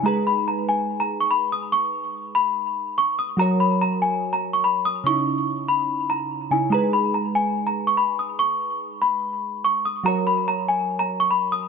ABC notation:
X:1
M:4/4
L:1/16
Q:1/4=144
K:G#m
V:1 name="Celesta"
a2 b2 a2 g3 a2 c' b2 d'2 | c'6 b6 c'2 d'2 | a2 b2 a2 g3 a2 c' b2 d'2 | c'6 b4 a4 g2 |
a2 b2 a2 g3 a2 c' b2 d'2 | c'6 b6 c'2 d'2 | a2 b2 a2 g3 a2 c' b2 d'2 |]
V:2 name="Synth keys"
[G,DGB]16- | [G,DGB]16 | [F,FAc]16 | [C,CDE]12- [C,CDE]2 [C,CDE]2 |
[G,DGB]16- | [G,DGB]16 | [F,FAc]16 |]